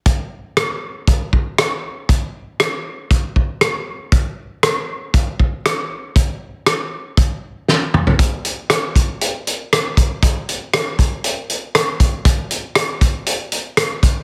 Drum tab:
HH |x---x---x---x---|x---x---x---x---|x---x---x---x---|x---x---x-------|
SD |----r-------r---|----r-------r---|----r-------r---|----r-------o---|
T2 |----------------|----------------|----------------|--------------o-|
FT |----------------|----------------|----------------|---------------o|
BD |o-------o-o-----|o-------o-o-----|o-------o-o-----|o-------o-------|

HH |x-x-x-x-x-x-x-x-|x-x-x-x-x-x-x-x-|x-x-x-x-x-x-x-x-|
SD |----r-------r---|----r-------r---|----r-------r---|
T2 |----------------|----------------|----------------|
FT |----------------|----------------|----------------|
BD |o-----o-------o-|o-----o-------o-|o-----o-------o-|